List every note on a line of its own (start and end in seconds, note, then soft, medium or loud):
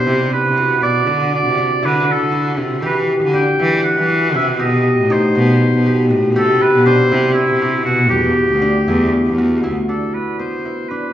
0.00 1.57 D4 medium
0.00 0.63 G4 medium
0.00 0.32 C5 medium
0.07 0.27 C3 medium
0.07 0.81 E4 medium
0.33 0.80 B4 medium
0.46 0.83 C3 medium
0.57 1.06 F#4 medium
0.82 1.10 B2 medium
0.82 1.82 E4 medium
0.82 1.30 D5 medium
1.07 1.37 D3 medium
1.07 2.32 F#4 medium
1.34 1.87 D5 medium
1.46 1.66 C3 medium
1.58 3.33 D4 medium
1.82 2.03 D3 medium
1.82 2.56 E4 medium
1.82 2.13 B4 medium
2.11 2.67 A4 medium
2.21 2.61 D3 medium
2.32 2.88 F#4 medium
2.57 2.85 C3 medium
2.57 3.59 E4 medium
2.82 3.13 E3 medium
2.82 4.15 G4 medium
2.82 2.97 B4 medium
3.23 3.42 D3 medium
3.34 5.16 D4 medium
3.34 3.85 G5 medium
3.59 3.79 E3 medium
3.59 4.34 E4 medium
3.84 4.35 F#5 medium
3.97 4.37 E3 medium
4.09 4.65 F#4 medium
4.34 4.62 C3 medium
4.34 5.16 E4 medium
4.34 4.47 E5 medium
4.59 4.90 B2 medium
4.59 5.41 G4 medium
4.59 5.14 D#5 medium
4.99 5.18 A2 medium
5.10 6.92 D#4 medium
5.10 6.12 C5 medium
5.35 5.56 B2 medium
5.35 5.92 F#4 medium
5.74 6.13 B2 medium
5.86 6.16 G4 medium
6.10 6.38 A2 medium
6.10 6.42 F#4 medium
6.36 6.66 C3 medium
6.36 7.68 G4 medium
6.36 6.63 A4 medium
6.62 6.85 B4 medium
6.73 6.93 B2 medium
6.86 8.61 D4 medium
6.86 7.33 C5 medium
7.12 7.32 C3 medium
7.12 7.86 E4 medium
7.34 7.82 E4 medium
7.50 7.89 C3 medium
7.62 8.17 F#4 medium
7.85 8.14 B2 medium
7.85 8.87 E4 medium
7.85 8.11 F#4 medium
8.09 8.42 E2 medium
8.09 9.37 G4 medium
8.09 9.44 G4 medium
8.50 8.70 D2 medium
8.62 9.88 D4 medium
8.88 9.08 E2 medium
8.88 9.63 E4 medium
9.27 9.66 E2 medium
9.38 11.13 F#4 medium
9.63 9.74 D2 medium
9.63 10.65 E4 medium
9.89 10.90 D4 medium
9.89 10.16 A4 soft
10.14 10.38 B4 soft
10.39 11.13 B3 soft
10.39 10.91 C5 soft
10.65 11.13 E4 soft
10.89 11.13 D4 soft
10.89 11.13 B4 soft